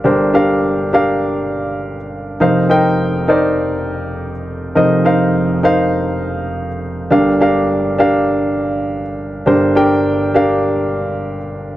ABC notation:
X:1
M:4/4
L:1/8
Q:"Swing 16ths" 1/4=102
K:Gm
V:1 name="Grand piano"
[DGBc] [DGBf]2 [DGBf]3 z2 | [EBcf] [EBcg]2 [EBcd]3 z2 | [EBce] [EBcf]2 [EBcf]3 z2 | [DGBf] [DGBf]2 [DGBf]3 z2 |
[DGBc] [DGBg]2 [DGBf]3 z2 |]
V:2 name="Grand piano" clef=bass
[G,,,G,,]8 | [F,,,F,,]8 | [F,,,F,,]8 | [G,,,G,,]8 |
[G,,,G,,]8 |]